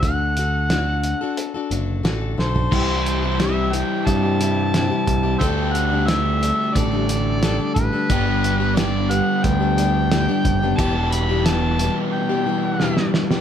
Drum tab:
CC |----------------|x---------------|----------------|----------------|
HH |x-x-x-x-x-x-x---|--x-x-x-x-x-x-x-|x-x-x-x-x-x-x-x-|x-x-x-x-x-x-x-x-|
SD |----o-------o-o-|----o-------o---|----o-------o---|----o-------o---|
FT |---------------o|----------------|----------------|----------------|
BD |o---------------|o-------o-----o-|o-------o-----o-|o-------o-----o-|

CC |----------------|
HH |x-x-x-x---------|
SD |----o-------oooo|
FT |----------------|
BD |o---------------|